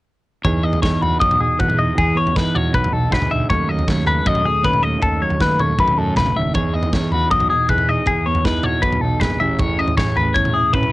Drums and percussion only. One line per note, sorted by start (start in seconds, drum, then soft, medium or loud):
0.45 kick medium
0.45 floor tom medium
0.73 floor tom medium
0.83 kick loud
0.83 snare medium
1.03 floor tom medium
1.21 kick medium
1.31 floor tom medium
1.31 mid tom medium
1.59 kick medium
1.59 floor tom medium
1.59 mid tom medium
1.69 mid tom medium
1.98 kick medium
1.98 floor tom medium
2.26 floor tom medium
2.36 kick medium
2.36 snare medium
2.56 floor tom medium
2.56 mid tom medium
2.74 kick medium
2.84 floor tom medium
2.84 mid tom medium
3.12 kick medium
3.12 snare medium
3.12 floor tom medium
3.12 mid tom medium
3.22 mid tom medium
3.50 kick medium
3.50 floor tom medium
3.79 floor tom medium
3.88 kick loud
3.88 snare medium
4.07 floor tom medium
4.26 kick loud
4.35 floor tom medium
4.35 mid tom medium
4.64 kick medium
4.64 floor tom medium
4.64 mid tom medium
4.73 mid tom medium
5.02 kick medium
5.02 floor tom medium
5.30 floor tom medium
5.40 kick medium
5.40 snare medium
5.59 floor tom medium
5.59 mid tom medium
5.79 kick loud
5.88 floor tom medium
5.88 mid tom medium
6.16 kick medium
6.16 snare medium
6.16 floor tom medium
6.16 mid tom medium
6.26 mid tom medium
6.54 kick medium
6.54 floor tom medium
6.83 floor tom medium
6.93 kick medium
6.93 snare medium
7.12 floor tom medium
7.31 kick medium
7.40 floor tom medium
7.40 mid tom medium
7.69 kick medium
7.69 floor tom medium
7.69 mid tom medium
7.78 mid tom medium
8.06 kick medium
8.06 floor tom medium
8.35 floor tom medium
8.45 kick medium
8.45 snare medium
8.63 floor tom medium
8.63 mid tom medium
8.83 kick medium
8.92 floor tom medium
8.92 mid tom medium
9.21 kick medium
9.21 snare medium
9.21 floor tom medium
9.21 mid tom medium
9.30 mid tom medium
9.59 kick loud
9.59 floor tom medium
9.88 floor tom medium
9.98 kick medium
9.98 snare medium
10.17 floor tom medium
10.36 kick medium
10.45 floor tom medium
10.45 mid tom medium
10.73 kick medium
10.73 floor tom medium
10.73 mid tom medium
10.83 mid tom medium